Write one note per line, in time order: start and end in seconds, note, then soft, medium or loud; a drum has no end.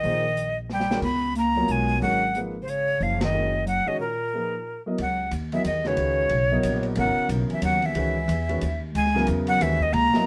0.00 0.98 A#1 medium
0.00 0.57 D#3 medium
0.00 0.57 D#5 medium
0.00 open hi-hat soft
0.04 0.22 F3 medium
0.04 0.22 A#3 medium
0.04 0.22 D#4 medium
0.04 0.23 G#4 medium
0.04 0.23 C5 medium
0.37 closed hi-hat medium
0.69 1.01 G3 medium
0.69 1.02 G5 medium
0.69 snare soft
0.80 snare medium
0.90 1.01 D#3 medium
0.90 1.02 G#3 medium
0.90 1.02 C#4 soft
0.90 1.02 F#4 medium
0.90 1.02 A#4 medium
0.90 snare medium
1.02 1.64 C#2 medium
1.02 1.33 B3 medium
1.02 1.34 B5 medium
1.02 kick medium
1.02 crash medium
1.35 1.70 A#3 medium
1.35 1.73 A#5 medium
1.35 closed hi-hat soft
1.55 1.99 F#3 medium
1.55 1.99 B3 medium
1.55 1.99 F4 medium
1.55 2.00 A#4 medium
1.55 1.99 C#5 medium
1.55 open hi-hat soft
1.68 1.99 B1 medium
1.68 1.99 G#3 medium
1.68 2.02 G#5 medium
1.68 closed hi-hat soft
1.88 open hi-hat soft
1.99 2.97 G#1 medium
1.99 2.20 D#3 medium
1.99 2.38 F#3 medium
1.99 2.20 G#3 medium
1.99 2.20 C#4 medium
1.99 2.20 F#4 medium
1.99 2.20 A#4 medium
1.99 2.39 F#5 medium
1.99 open hi-hat soft
2.35 2.53 F3 medium
2.35 2.53 A#3 soft
2.35 2.53 D#4 soft
2.35 2.54 G#4 soft
2.35 2.54 B4 medium
2.35 closed hi-hat soft
2.62 2.68 C3 soft
2.62 2.71 C5 medium
2.66 3.02 C#3 medium
2.66 3.04 C#5 medium
2.66 closed hi-hat medium
2.88 open hi-hat soft
3.00 3.83 F#1 medium
3.00 3.21 F3 medium
3.00 3.22 F5 medium
3.00 open hi-hat soft
3.21 3.63 D#3 medium
3.21 3.65 D#5 medium
3.21 snare medium
3.21 ride medium
3.34 3.52 D#3 soft
3.34 3.52 G#3 soft
3.34 3.52 C#4 soft
3.34 3.52 F#4 soft
3.34 3.52 A#4 soft
3.66 3.88 F#3 medium
3.66 3.89 F#5 medium
3.66 closed hi-hat medium
3.86 3.98 D#3 medium
3.86 3.99 D#3 medium
3.86 3.98 G#3 medium
3.86 3.98 C#4 medium
3.86 3.99 F#4 medium
3.86 3.99 C#5 medium
3.86 4.00 D#5 medium
3.86 muted upright bass stroke soft
3.99 4.82 A#2 medium
3.99 4.82 A#4 medium
4.34 4.51 F3 soft
4.34 4.51 A#3 soft
4.34 4.52 D#4 soft
4.34 4.51 G#4 soft
4.34 4.52 B4 medium
4.86 4.97 F#3 medium
4.86 4.98 B3 medium
4.86 4.98 E4 medium
4.86 4.98 A#4 medium
4.86 4.98 D#5 medium
4.98 5.30 C#2 medium
4.98 5.29 F#3 medium
4.98 5.31 F#5 medium
4.98 ride medium
5.31 5.63 D#2 medium
5.31 hi-hat pedal medium
5.31 ride medium
5.52 5.63 E3 medium
5.52 5.64 F#3 medium
5.52 5.63 B3 medium
5.52 5.64 E4 medium
5.52 5.64 A#4 medium
5.52 5.64 D#5 medium
5.52 5.65 E5 medium
5.52 ride soft
5.64 5.96 E2 medium
5.64 5.86 D#3 medium
5.64 5.89 D#5 medium
5.64 hi-hat pedal medium
5.64 ride medium
5.84 6.84 C#3 medium
5.84 6.28 D#3 medium
5.84 6.28 G#3 medium
5.84 6.28 C#4 medium
5.84 6.29 F#4 medium
5.84 6.29 B4 medium
5.84 6.85 C#5 medium
5.84 snare soft
5.96 6.29 C#2 medium
5.96 ride medium
6.29 6.62 B1 medium
6.29 ride medium
6.51 6.94 F#3 medium
6.51 6.94 B3 medium
6.51 6.94 E4 medium
6.51 6.94 A#4 medium
6.51 6.95 D#5 medium
6.63 6.95 A#1 medium
6.63 hi-hat pedal medium
6.63 ride medium
6.83 ride soft
6.95 7.16 G#1 medium
6.95 7.88 C#3 medium
6.95 7.27 F#3 medium
6.95 7.88 F#3 medium
6.95 7.88 B3 medium
6.95 7.88 E4 medium
6.95 7.88 A#4 medium
6.95 7.28 F#5 medium
6.95 ride medium
7.17 muted upright bass stroke soft
7.29 7.48 B1 medium
7.29 hi-hat pedal medium
7.29 ride medium
7.49 7.61 E3 medium
7.49 muted upright bass stroke soft
7.49 ride soft
7.53 7.63 E5 medium
7.62 7.94 D#2 medium
7.62 7.84 F#3 medium
7.62 7.87 F#5 medium
7.62 hi-hat pedal medium
7.62 ride medium
7.82 8.82 E3 medium
7.82 8.83 E5 medium
7.82 ride soft
7.95 8.27 C#2 medium
7.95 8.14 D#3 medium
7.95 8.13 G#3 medium
7.95 8.14 C#4 medium
7.95 8.14 F#4 medium
7.95 8.14 B4 medium
7.95 ride medium
8.28 8.60 E2 medium
8.28 hi-hat pedal medium
8.28 ride medium
8.49 8.60 D#3 medium
8.49 8.60 G#3 medium
8.49 8.60 C#4 medium
8.49 8.61 F#4 medium
8.49 8.61 B4 medium
8.49 ride soft
8.61 8.94 D#2 medium
8.61 hi-hat pedal medium
8.61 ride medium
8.93 9.27 C#2 medium
8.93 9.24 G#3 medium
8.93 9.26 G#5 medium
8.93 ride medium
9.05 snare soft
9.14 9.58 C#3 medium
9.14 9.58 F#3 medium
9.14 9.58 B3 medium
9.14 9.58 E4 medium
9.14 9.58 A#4 medium
9.14 snare soft
9.27 9.60 E2 medium
9.27 hi-hat pedal medium
9.27 ride medium
9.47 9.62 F#3 medium
9.47 9.64 F#5 loud
9.47 ride soft
9.60 9.92 D#2 medium
9.60 9.79 D#3 medium
9.60 9.81 E3 medium
9.60 9.78 G#3 medium
9.60 9.79 C#4 soft
9.60 9.79 F#4 medium
9.60 9.79 B4 medium
9.60 9.84 E5 medium
9.60 hi-hat pedal medium
9.60 ride medium
9.79 9.95 D#3 medium
9.79 9.95 D#5 medium
9.79 kick medium
9.93 10.12 C#2 medium
9.93 10.26 A#3 medium
9.93 10.26 A#5 loud
9.93 ride medium
10.14 10.26 F#3 medium
10.14 10.26 B3 medium
10.14 10.26 E4 medium
10.14 10.26 A#4 medium
10.14 10.26 D#5 medium
10.14 muted upright bass stroke soft
10.14 snare medium